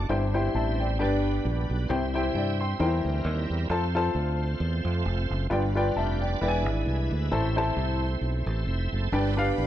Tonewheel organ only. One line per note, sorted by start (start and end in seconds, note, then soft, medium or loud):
0.00 0.10 D5 medium
0.09 0.98 G3 medium
0.09 0.98 C4 medium
0.09 0.98 E4 medium
0.09 0.98 C5 medium
0.99 1.88 G3 medium
0.99 1.88 B3 medium
0.99 1.88 D4 medium
0.99 1.06 A4 medium
1.05 1.91 B4 medium
1.88 2.78 G3 medium
1.88 2.78 C4 medium
1.88 1.96 D4 soft
1.88 2.14 C5 medium
1.94 2.78 E4 medium
2.14 2.34 C5 soft
2.14 2.34 E5 medium
2.34 2.58 E5 medium
2.34 2.58 G5 medium
2.59 3.03 C5 soft
2.59 3.03 E5 medium
2.79 3.68 G3 medium
2.79 3.68 C4 medium
2.79 3.68 E4 medium
2.79 3.68 A#4 medium
3.69 5.47 A3 medium
3.69 5.47 C4 medium
3.69 5.47 F4 medium
3.69 5.47 C5 medium
5.51 6.40 G3 medium
5.51 6.40 D4 medium
5.51 6.40 F4 medium
5.51 5.96 B4 medium
5.97 6.21 G4 medium
5.97 6.21 B4 medium
6.22 6.47 B4 soft
6.22 6.64 D5 medium
6.42 7.30 G#3 medium
6.42 7.31 D4 medium
6.42 7.30 E4 medium
6.42 6.48 A#4 medium
6.48 7.33 B4 medium
6.88 7.10 E5 medium
6.88 7.11 G#5 medium
7.11 7.54 E5 medium
7.32 9.09 A3 medium
7.32 9.09 C4 medium
7.32 9.09 E4 soft
7.32 8.45 C5 medium
8.47 8.66 A4 soft
8.47 8.66 C5 medium
8.67 8.91 C5 medium
8.67 8.91 E5 medium
8.92 9.35 A4 medium
8.92 9.35 C5 medium
9.12 9.67 G3 medium
9.12 9.67 B3 medium
9.12 9.67 D4 medium
9.12 9.67 B4 medium